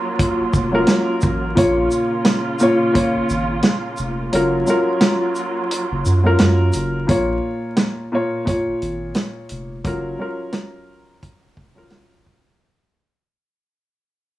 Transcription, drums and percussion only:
0.19 kick loud
0.19 closed hi-hat medium
0.54 kick medium
0.54 shaker medium
0.87 snare loud
0.87 snare medium
0.87 closed hi-hat medium
1.21 kick medium
1.21 shaker medium
1.57 kick loud
1.57 closed hi-hat medium
1.91 shaker medium
2.25 snare loud
2.25 snare medium
2.25 closed hi-hat medium
2.60 shaker medium
2.95 kick loud
2.95 closed hi-hat medium
3.30 shaker medium
3.62 snare loud
3.62 snare medium
3.62 closed hi-hat medium
3.97 shaker medium
4.33 closed hi-hat medium
4.67 shaker medium
5.00 snare loud
5.00 snare medium
5.00 closed hi-hat medium
5.36 shaker medium
5.71 closed hi-hat medium
6.06 shaker medium
6.38 snare loud
6.38 snare medium
6.38 closed hi-hat medium
6.73 closed hi-hat medium
6.73 shaker medium
7.09 kick loud
7.09 closed hi-hat medium
7.77 snare loud
7.77 snare medium
7.77 closed hi-hat medium
8.47 kick loud
8.47 closed hi-hat medium
8.82 closed hi-hat medium
9.14 snare loud
9.14 snare medium
9.14 closed hi-hat medium
9.49 closed hi-hat medium
9.84 kick loud
9.84 closed hi-hat medium
10.52 snare loud
10.52 snare medium
10.52 closed hi-hat medium
11.23 kick loud
11.23 closed hi-hat medium
11.57 kick medium
11.90 snare loud
11.90 snare medium
11.90 closed hi-hat medium
12.26 kick medium

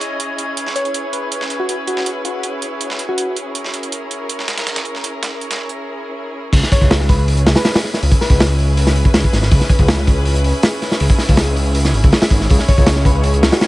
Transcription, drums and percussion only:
0.01 closed hi-hat medium
0.20 closed hi-hat medium
0.38 closed hi-hat medium
0.57 closed hi-hat medium
0.67 snare soft
0.76 closed hi-hat medium
0.85 closed hi-hat soft
0.94 closed hi-hat medium
1.13 closed hi-hat medium
1.32 closed hi-hat medium
1.41 snare medium
1.50 closed hi-hat medium
1.69 closed hi-hat medium
1.87 closed hi-hat medium
1.97 snare soft
2.06 closed hi-hat medium
2.25 closed hi-hat medium
2.43 closed hi-hat medium
2.62 closed hi-hat medium
2.81 closed hi-hat medium
2.90 snare medium
2.99 closed hi-hat medium
3.18 closed hi-hat medium
3.36 closed hi-hat medium
3.55 closed hi-hat medium
3.64 snare soft
3.74 closed hi-hat medium
3.83 closed hi-hat soft
3.92 closed hi-hat medium
4.11 closed hi-hat medium
4.29 closed hi-hat medium
4.39 snare medium
4.48 snare loud
4.48 closed hi-hat medium
4.58 snare loud
4.58 closed hi-hat medium
4.67 snare loud
4.67 closed hi-hat medium
4.76 snare medium
4.76 closed hi-hat medium
4.85 closed hi-hat medium
4.95 snare soft
5.04 closed hi-hat medium
5.23 snare loud
5.23 closed hi-hat medium
5.41 closed hi-hat medium
5.51 snare loud
5.51 closed hi-hat medium
5.69 closed hi-hat medium
6.53 kick loud
6.53 open hi-hat medium
6.53 crash medium
6.63 snare soft
6.72 kick loud
6.72 open hi-hat medium
6.81 kick medium
6.91 snare loud
6.91 open hi-hat medium
7.00 snare medium
7.09 kick loud
7.09 open hi-hat medium
7.28 open hi-hat medium
7.37 closed hi-hat soft
7.46 snare loud
7.46 open hi-hat medium
7.55 snare loud
7.55 open hi-hat medium
7.65 snare loud
7.65 open hi-hat medium
7.74 snare loud
7.74 open hi-hat medium
7.84 snare soft
7.84 open hi-hat medium
7.94 snare soft
8.03 open hi-hat medium
8.12 kick medium
8.21 snare soft
8.21 open hi-hat medium
8.30 kick medium
8.40 snare loud
8.40 open hi-hat medium
8.59 open hi-hat medium
8.77 open hi-hat medium
8.87 snare soft
8.96 open hi-hat medium
9.05 kick medium
9.14 snare loud
9.14 open hi-hat medium
9.24 kick medium
9.33 snare soft
9.33 open hi-hat medium
9.42 snare soft
9.51 kick loud
9.51 open hi-hat medium
9.61 snare soft
9.69 kick medium
9.69 open hi-hat medium
9.79 kick loud
9.88 snare loud
9.88 open hi-hat medium
9.97 snare soft
10.07 kick medium
10.07 open hi-hat medium
10.25 open hi-hat medium
10.35 closed hi-hat soft
10.44 open hi-hat medium
10.63 snare loud
10.63 open hi-hat medium
10.82 snare soft
10.82 open hi-hat medium
10.91 snare soft
11.00 open hi-hat loud
11.10 kick medium
11.18 snare soft
11.18 open hi-hat medium
11.29 kick medium
11.37 snare loud
11.37 open hi-hat loud
11.56 open hi-hat medium
11.75 open hi-hat loud
11.85 snare soft
11.94 open hi-hat medium
12.04 kick loud
12.12 snare loud
12.12 open hi-hat medium
12.22 snare loud
12.22 open hi-hat medium
12.31 kick loud
12.31 open hi-hat medium
12.41 snare soft
12.50 kick loud
12.50 open hi-hat medium
12.59 snare soft
12.68 kick loud
12.68 open hi-hat medium
12.78 kick loud
12.87 snare loud
12.87 open hi-hat loud
12.96 snare soft
13.05 kick medium
13.05 open hi-hat medium
13.23 open hi-hat loud
13.34 closed hi-hat soft
13.43 snare loud
13.43 open hi-hat medium
13.52 snare loud
13.52 open hi-hat medium
13.61 snare loud
13.61 open hi-hat medium

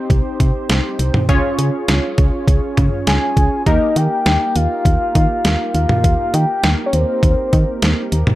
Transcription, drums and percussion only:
0.10 kick loud
0.10 closed hi-hat medium
0.40 kick medium
0.40 closed hi-hat medium
0.69 snare loud
0.69 closed hi-hat medium
0.99 closed hi-hat medium
1.14 mid tom loud
1.14 mid tom medium
1.29 kick loud
1.29 closed hi-hat medium
1.59 closed hi-hat medium
1.88 snare loud
1.88 closed hi-hat medium
2.18 kick medium
2.18 closed hi-hat medium
2.48 kick medium
2.48 closed hi-hat medium
2.77 kick medium
2.77 closed hi-hat medium
2.77 mid tom medium
3.07 snare loud
3.07 closed hi-hat medium
3.37 kick medium
3.37 closed hi-hat medium
3.66 kick loud
3.66 closed hi-hat medium
3.96 closed hi-hat medium
4.26 snare loud
4.26 closed hi-hat medium
4.56 closed hi-hat medium
4.85 kick loud
4.85 closed hi-hat medium
5.15 kick medium
5.15 closed hi-hat medium
5.45 snare loud
5.45 closed hi-hat medium
5.75 closed hi-hat medium
5.89 mid tom loud
6.04 kick loud
6.04 closed hi-hat medium
6.34 closed hi-hat medium
6.63 snare loud
6.63 closed hi-hat medium
6.93 closed hi-hat medium
7.23 kick medium
7.23 closed hi-hat medium
7.53 kick medium
7.53 closed hi-hat medium
7.82 snare loud
7.82 closed hi-hat medium
8.12 closed hi-hat medium
8.27 mid tom loud

